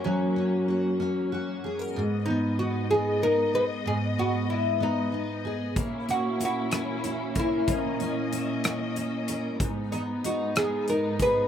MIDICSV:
0, 0, Header, 1, 5, 480
1, 0, Start_track
1, 0, Key_signature, 5, "minor"
1, 0, Tempo, 637620
1, 29, Time_signature, 6, 3, 24, 8
1, 8641, End_track
2, 0, Start_track
2, 0, Title_t, "Oud"
2, 0, Program_c, 0, 24
2, 33, Note_on_c, 0, 61, 57
2, 959, Note_off_c, 0, 61, 0
2, 1698, Note_on_c, 0, 63, 66
2, 1949, Note_off_c, 0, 63, 0
2, 1951, Note_on_c, 0, 66, 59
2, 2184, Note_off_c, 0, 66, 0
2, 2187, Note_on_c, 0, 68, 73
2, 2409, Note_off_c, 0, 68, 0
2, 2433, Note_on_c, 0, 70, 82
2, 2669, Note_off_c, 0, 70, 0
2, 2672, Note_on_c, 0, 71, 83
2, 2736, Note_off_c, 0, 71, 0
2, 2916, Note_on_c, 0, 68, 70
2, 2979, Note_off_c, 0, 68, 0
2, 3156, Note_on_c, 0, 66, 75
2, 3373, Note_off_c, 0, 66, 0
2, 3387, Note_on_c, 0, 64, 55
2, 3609, Note_off_c, 0, 64, 0
2, 3636, Note_on_c, 0, 63, 58
2, 4140, Note_off_c, 0, 63, 0
2, 4595, Note_on_c, 0, 66, 84
2, 4836, Note_off_c, 0, 66, 0
2, 4854, Note_on_c, 0, 66, 73
2, 5563, Note_off_c, 0, 66, 0
2, 5566, Note_on_c, 0, 64, 71
2, 5779, Note_off_c, 0, 64, 0
2, 5808, Note_on_c, 0, 61, 53
2, 6727, Note_off_c, 0, 61, 0
2, 7469, Note_on_c, 0, 63, 60
2, 7533, Note_off_c, 0, 63, 0
2, 7723, Note_on_c, 0, 66, 57
2, 7938, Note_off_c, 0, 66, 0
2, 7956, Note_on_c, 0, 68, 69
2, 8198, Note_off_c, 0, 68, 0
2, 8203, Note_on_c, 0, 70, 72
2, 8442, Note_off_c, 0, 70, 0
2, 8448, Note_on_c, 0, 71, 87
2, 8641, Note_off_c, 0, 71, 0
2, 8641, End_track
3, 0, Start_track
3, 0, Title_t, "Steel-string acoustic guitar"
3, 0, Program_c, 1, 25
3, 0, Note_on_c, 1, 61, 46
3, 0, Note_on_c, 1, 66, 44
3, 0, Note_on_c, 1, 70, 51
3, 38, Note_on_c, 1, 54, 59
3, 263, Note_off_c, 1, 61, 0
3, 272, Note_on_c, 1, 61, 45
3, 505, Note_off_c, 1, 66, 0
3, 514, Note_on_c, 1, 66, 46
3, 742, Note_off_c, 1, 61, 0
3, 751, Note_on_c, 1, 61, 53
3, 985, Note_off_c, 1, 66, 0
3, 995, Note_on_c, 1, 66, 51
3, 1225, Note_off_c, 1, 70, 0
3, 1235, Note_on_c, 1, 68, 52
3, 1348, Note_off_c, 1, 68, 0
3, 1348, Note_on_c, 1, 70, 45
3, 1471, Note_off_c, 1, 54, 0
3, 1477, Note_on_c, 1, 44, 66
3, 1515, Note_off_c, 1, 70, 0
3, 1516, Note_off_c, 1, 61, 0
3, 1518, Note_off_c, 1, 66, 0
3, 1715, Note_on_c, 1, 59, 46
3, 1952, Note_on_c, 1, 63, 53
3, 2190, Note_off_c, 1, 59, 0
3, 2198, Note_on_c, 1, 59, 57
3, 2416, Note_off_c, 1, 63, 0
3, 2425, Note_on_c, 1, 63, 50
3, 2663, Note_on_c, 1, 68, 43
3, 2894, Note_off_c, 1, 44, 0
3, 2903, Note_on_c, 1, 44, 60
3, 3141, Note_off_c, 1, 59, 0
3, 3150, Note_on_c, 1, 59, 49
3, 3384, Note_off_c, 1, 63, 0
3, 3607, Note_off_c, 1, 59, 0
3, 3616, Note_on_c, 1, 59, 55
3, 3855, Note_on_c, 1, 63, 44
3, 4092, Note_off_c, 1, 68, 0
3, 4101, Note_on_c, 1, 68, 50
3, 4343, Note_off_c, 1, 44, 0
3, 4348, Note_on_c, 1, 58, 57
3, 4387, Note_off_c, 1, 63, 0
3, 4388, Note_off_c, 1, 59, 0
3, 4390, Note_off_c, 1, 68, 0
3, 4581, Note_on_c, 1, 61, 44
3, 4817, Note_on_c, 1, 64, 49
3, 5050, Note_off_c, 1, 61, 0
3, 5059, Note_on_c, 1, 61, 51
3, 5292, Note_off_c, 1, 64, 0
3, 5301, Note_on_c, 1, 64, 44
3, 5543, Note_on_c, 1, 70, 46
3, 5770, Note_off_c, 1, 58, 0
3, 5779, Note_on_c, 1, 58, 62
3, 6020, Note_off_c, 1, 61, 0
3, 6029, Note_on_c, 1, 61, 47
3, 6259, Note_off_c, 1, 64, 0
3, 6268, Note_on_c, 1, 64, 51
3, 6504, Note_off_c, 1, 61, 0
3, 6513, Note_on_c, 1, 61, 47
3, 6742, Note_off_c, 1, 64, 0
3, 6751, Note_on_c, 1, 64, 50
3, 6985, Note_off_c, 1, 70, 0
3, 6996, Note_on_c, 1, 70, 53
3, 7223, Note_off_c, 1, 58, 0
3, 7238, Note_on_c, 1, 44, 70
3, 7277, Note_off_c, 1, 61, 0
3, 7277, Note_off_c, 1, 64, 0
3, 7279, Note_off_c, 1, 70, 0
3, 7473, Note_on_c, 1, 59, 45
3, 7710, Note_on_c, 1, 63, 47
3, 7947, Note_off_c, 1, 59, 0
3, 7956, Note_on_c, 1, 59, 56
3, 8189, Note_off_c, 1, 63, 0
3, 8197, Note_on_c, 1, 63, 48
3, 8432, Note_on_c, 1, 68, 47
3, 8641, Note_off_c, 1, 44, 0
3, 8641, Note_off_c, 1, 59, 0
3, 8641, Note_off_c, 1, 63, 0
3, 8641, Note_off_c, 1, 68, 0
3, 8641, End_track
4, 0, Start_track
4, 0, Title_t, "String section"
4, 0, Program_c, 2, 48
4, 0, Note_on_c, 2, 42, 52
4, 0, Note_on_c, 2, 54, 48
4, 0, Note_on_c, 2, 58, 53
4, 0, Note_on_c, 2, 61, 63
4, 1436, Note_off_c, 2, 42, 0
4, 1438, Note_off_c, 2, 54, 0
4, 1438, Note_off_c, 2, 58, 0
4, 1438, Note_off_c, 2, 61, 0
4, 1468, Note_on_c, 2, 44, 59
4, 1469, Note_on_c, 2, 56, 57
4, 1469, Note_on_c, 2, 59, 54
4, 1469, Note_on_c, 2, 75, 65
4, 4316, Note_off_c, 2, 44, 0
4, 4316, Note_off_c, 2, 56, 0
4, 4316, Note_off_c, 2, 59, 0
4, 4316, Note_off_c, 2, 75, 0
4, 4338, Note_on_c, 2, 64, 68
4, 4340, Note_on_c, 2, 61, 54
4, 4342, Note_on_c, 2, 58, 54
4, 4343, Note_on_c, 2, 46, 56
4, 5767, Note_off_c, 2, 64, 0
4, 5788, Note_on_c, 2, 75, 62
4, 7195, Note_off_c, 2, 61, 0
4, 7196, Note_off_c, 2, 58, 0
4, 7197, Note_off_c, 2, 46, 0
4, 7213, Note_off_c, 2, 75, 0
4, 7228, Note_on_c, 2, 63, 68
4, 7231, Note_on_c, 2, 56, 54
4, 7232, Note_on_c, 2, 44, 61
4, 7234, Note_on_c, 2, 59, 50
4, 8641, Note_off_c, 2, 44, 0
4, 8641, Note_off_c, 2, 56, 0
4, 8641, Note_off_c, 2, 59, 0
4, 8641, Note_off_c, 2, 63, 0
4, 8641, End_track
5, 0, Start_track
5, 0, Title_t, "Drums"
5, 4338, Note_on_c, 9, 36, 91
5, 4339, Note_on_c, 9, 42, 65
5, 4414, Note_off_c, 9, 36, 0
5, 4414, Note_off_c, 9, 42, 0
5, 4582, Note_on_c, 9, 42, 40
5, 4657, Note_off_c, 9, 42, 0
5, 4823, Note_on_c, 9, 42, 55
5, 4898, Note_off_c, 9, 42, 0
5, 5055, Note_on_c, 9, 42, 73
5, 5063, Note_on_c, 9, 37, 84
5, 5130, Note_off_c, 9, 42, 0
5, 5138, Note_off_c, 9, 37, 0
5, 5299, Note_on_c, 9, 42, 46
5, 5374, Note_off_c, 9, 42, 0
5, 5537, Note_on_c, 9, 42, 58
5, 5539, Note_on_c, 9, 36, 76
5, 5612, Note_off_c, 9, 42, 0
5, 5614, Note_off_c, 9, 36, 0
5, 5779, Note_on_c, 9, 42, 76
5, 5780, Note_on_c, 9, 36, 87
5, 5855, Note_off_c, 9, 42, 0
5, 5856, Note_off_c, 9, 36, 0
5, 6023, Note_on_c, 9, 42, 44
5, 6098, Note_off_c, 9, 42, 0
5, 6268, Note_on_c, 9, 42, 54
5, 6343, Note_off_c, 9, 42, 0
5, 6504, Note_on_c, 9, 42, 75
5, 6513, Note_on_c, 9, 37, 90
5, 6579, Note_off_c, 9, 42, 0
5, 6588, Note_off_c, 9, 37, 0
5, 6747, Note_on_c, 9, 42, 45
5, 6822, Note_off_c, 9, 42, 0
5, 6986, Note_on_c, 9, 42, 64
5, 7061, Note_off_c, 9, 42, 0
5, 7227, Note_on_c, 9, 36, 94
5, 7228, Note_on_c, 9, 42, 70
5, 7302, Note_off_c, 9, 36, 0
5, 7304, Note_off_c, 9, 42, 0
5, 7472, Note_on_c, 9, 42, 37
5, 7547, Note_off_c, 9, 42, 0
5, 7712, Note_on_c, 9, 42, 59
5, 7787, Note_off_c, 9, 42, 0
5, 7947, Note_on_c, 9, 42, 73
5, 7956, Note_on_c, 9, 37, 100
5, 8023, Note_off_c, 9, 42, 0
5, 8031, Note_off_c, 9, 37, 0
5, 8188, Note_on_c, 9, 42, 46
5, 8263, Note_off_c, 9, 42, 0
5, 8428, Note_on_c, 9, 36, 80
5, 8428, Note_on_c, 9, 42, 63
5, 8503, Note_off_c, 9, 36, 0
5, 8503, Note_off_c, 9, 42, 0
5, 8641, End_track
0, 0, End_of_file